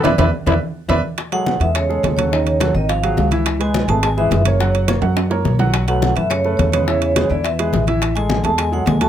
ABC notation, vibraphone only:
X:1
M:4/4
L:1/8
Q:1/4=211
K:A
V:1 name="Vibraphone"
z8 | z f2 e c3 c- | c3 ^d =f3 z | z g2 a g e2 c- |
c2 z6 | z f2 e c2 c c- | c3 d e3 z | z g2 a g f g a |]